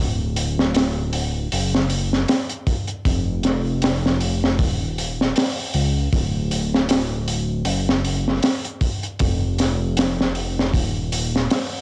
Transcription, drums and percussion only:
0.36 open hi-hat
0.59 snare
0.75 snare, open hi-hat
1.13 open hi-hat
1.52 open hi-hat
1.75 snare
1.90 open hi-hat
2.13 snare
2.28 snare, open hi-hat
2.49 closed hi-hat
2.67 kick, open hi-hat
2.87 closed hi-hat
3.05 kick, open hi-hat
3.43 snare, open hi-hat
3.82 snare, open hi-hat
4.06 snare
4.20 open hi-hat
4.44 snare
4.59 kick, open hi-hat
4.98 open hi-hat
5.21 snare
5.36 snare, open hi-hat
5.74 open hi-hat
6.12 kick, open hi-hat
6.51 open hi-hat
6.74 snare
6.89 snare, open hi-hat
7.28 open hi-hat
7.65 open hi-hat
7.89 snare
8.05 open hi-hat
8.28 snare
8.43 snare, open hi-hat
8.65 closed hi-hat
8.81 kick, open hi-hat
9.03 closed hi-hat
9.19 kick, open hi-hat
9.58 snare, open hi-hat
9.97 snare, open hi-hat
10.21 snare
10.35 open hi-hat
10.59 snare
10.73 kick, open hi-hat
11.12 open hi-hat
11.36 snare
11.50 snare, open hi-hat

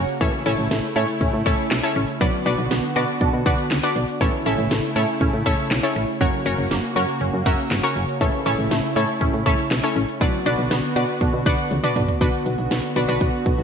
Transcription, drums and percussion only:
0.09 closed hi-hat
0.21 kick, closed hi-hat
0.46 closed hi-hat
0.58 closed hi-hat
0.71 snare, closed hi-hat
0.96 closed hi-hat
1.08 closed hi-hat
1.21 kick, closed hi-hat
1.46 kick, closed hi-hat
1.58 closed hi-hat
1.71 snare, clap, closed hi-hat
1.96 closed hi-hat
2.09 closed hi-hat
2.21 kick, closed hi-hat
2.46 closed hi-hat
2.58 closed hi-hat
2.71 snare, closed hi-hat
2.96 closed hi-hat
3.08 closed hi-hat
3.21 kick, closed hi-hat
3.46 kick, closed hi-hat
3.58 closed hi-hat
3.71 snare, clap, closed hi-hat
3.96 closed hi-hat
4.09 closed hi-hat
4.21 kick, closed hi-hat
4.46 closed hi-hat
4.58 closed hi-hat
4.71 snare, closed hi-hat
4.96 closed hi-hat
5.08 closed hi-hat
5.21 kick, closed hi-hat
5.46 kick, closed hi-hat
5.58 closed hi-hat
5.71 snare, clap, closed hi-hat
5.96 closed hi-hat
6.09 closed hi-hat
6.21 kick, closed hi-hat
6.46 closed hi-hat
6.58 closed hi-hat
6.71 snare, closed hi-hat
6.96 closed hi-hat
7.08 closed hi-hat
7.21 closed hi-hat
7.46 kick, closed hi-hat
7.59 closed hi-hat
7.71 snare, clap, closed hi-hat
7.96 closed hi-hat
8.09 closed hi-hat
8.21 kick, closed hi-hat
8.46 closed hi-hat
8.58 closed hi-hat
8.71 snare, closed hi-hat
8.96 closed hi-hat
9.09 closed hi-hat
9.21 kick, closed hi-hat
9.46 kick, closed hi-hat
9.59 closed hi-hat
9.71 snare, clap, closed hi-hat
9.96 closed hi-hat
10.09 closed hi-hat
10.21 kick, closed hi-hat
10.46 closed hi-hat
10.58 closed hi-hat
10.71 snare, closed hi-hat
10.96 closed hi-hat
11.08 closed hi-hat
11.21 kick, closed hi-hat
11.46 kick, closed hi-hat
11.59 closed hi-hat
11.71 closed hi-hat, high tom
11.84 mid tom
11.96 closed hi-hat, mid tom
12.09 closed hi-hat, floor tom
12.21 kick, closed hi-hat
12.46 closed hi-hat
12.58 closed hi-hat
12.71 snare, closed hi-hat
12.96 closed hi-hat
13.08 closed hi-hat
13.21 kick, closed hi-hat
13.46 kick, closed hi-hat
13.58 closed hi-hat

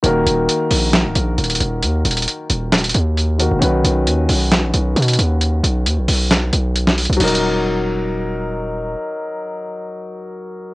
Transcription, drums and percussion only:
0.04 closed hi-hat
0.27 closed hi-hat
0.49 closed hi-hat
0.71 open hi-hat
0.93 snare, clap, closed hi-hat
1.15 closed hi-hat
1.38 closed hi-hat
1.44 closed hi-hat
1.50 closed hi-hat
1.55 closed hi-hat
1.61 closed hi-hat
1.83 closed hi-hat
2.05 closed hi-hat
2.11 closed hi-hat
2.17 closed hi-hat
2.22 closed hi-hat
2.28 closed hi-hat
2.50 closed hi-hat
2.72 snare, clap, closed hi-hat
2.78 closed hi-hat
2.84 closed hi-hat
2.90 closed hi-hat
2.95 closed hi-hat
3.18 closed hi-hat
3.40 closed hi-hat
3.62 closed hi-hat
3.85 closed hi-hat
4.07 closed hi-hat
4.29 open hi-hat
4.52 snare, clap, closed hi-hat
4.74 closed hi-hat
4.96 closed hi-hat
5.02 closed hi-hat
5.08 closed hi-hat
5.13 closed hi-hat
5.19 closed hi-hat
5.41 closed hi-hat
5.64 closed hi-hat
5.86 closed hi-hat
6.08 open hi-hat
6.31 snare, clap
6.53 closed hi-hat
6.76 closed hi-hat
6.87 snare
6.98 closed hi-hat, open hi-hat
7.05 closed hi-hat
7.13 closed hi-hat
7.20 closed hi-hat, crash
7.28 closed hi-hat
7.35 closed hi-hat

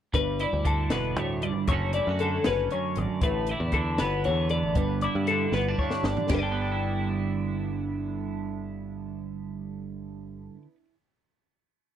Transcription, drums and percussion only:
0.14 kick, closed hi-hat
0.39 closed hi-hat
0.65 kick, closed hi-hat
0.90 snare, closed hi-hat
1.16 closed hi-hat
1.42 closed hi-hat
1.67 kick, closed hi-hat
1.93 closed hi-hat
2.19 closed hi-hat
2.44 snare, closed hi-hat
2.71 closed hi-hat
2.96 closed hi-hat
3.21 kick, closed hi-hat
3.47 closed hi-hat
3.72 kick, closed hi-hat
3.98 snare, closed hi-hat
4.24 closed hi-hat
4.49 closed hi-hat
4.75 kick, closed hi-hat
5.01 closed hi-hat
5.27 closed hi-hat
5.52 snare
5.78 kick
5.90 snare
6.04 snare
6.17 floor tom
6.29 kick, snare, ride bell

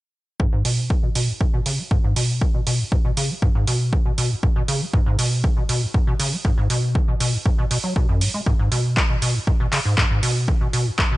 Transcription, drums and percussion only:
0.40 kick
0.65 open hi-hat
0.90 kick
1.15 open hi-hat
1.41 kick
1.66 open hi-hat
1.91 kick
2.16 open hi-hat
2.41 kick
2.67 open hi-hat
2.92 kick
3.17 open hi-hat
3.42 kick
3.67 open hi-hat
3.93 kick
4.18 open hi-hat
4.43 kick
4.68 open hi-hat
4.94 kick
5.19 open hi-hat
5.44 kick
5.69 open hi-hat
5.94 kick
6.20 open hi-hat
6.45 kick
6.70 open hi-hat
6.95 kick
7.20 open hi-hat
7.46 kick
7.71 open hi-hat
7.96 kick
8.21 open hi-hat
8.46 kick
8.72 open hi-hat
8.97 kick, clap
9.22 open hi-hat
9.47 kick
9.73 clap, open hi-hat
9.98 kick, clap
10.23 open hi-hat
10.48 kick
10.73 open hi-hat
10.99 kick, clap

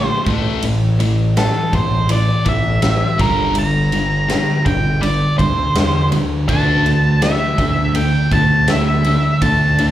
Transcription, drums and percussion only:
0.26 kick, ride
0.62 ride
1.00 ride
1.37 snare, ride
1.73 kick, ride
2.09 ride
2.45 kick, ride
2.82 snare, ride
3.19 kick, ride
3.55 ride
3.92 ride
4.29 snare, ride
4.66 kick, ride
5.03 ride
5.39 kick, ride
5.75 snare, ride
6.12 ride
6.49 kick, ride
6.86 ride
7.22 snare, ride
7.58 kick, ride
7.95 ride
8.31 kick, ride
8.68 snare, ride
9.04 ride
9.42 kick, ride
9.78 ride

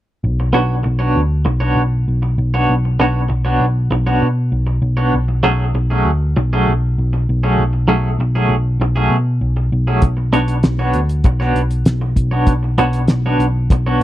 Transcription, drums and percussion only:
10.02 kick, closed hi-hat
10.33 closed hi-hat
10.48 closed hi-hat
10.63 snare, closed hi-hat
10.93 closed hi-hat
11.09 closed hi-hat
11.24 kick, closed hi-hat
11.41 snare
11.56 closed hi-hat
11.71 closed hi-hat
11.86 snare, closed hi-hat
12.16 kick, closed hi-hat
12.47 kick, closed hi-hat
12.78 closed hi-hat
12.93 closed hi-hat
13.08 snare, closed hi-hat
13.40 closed hi-hat
13.70 kick, closed hi-hat

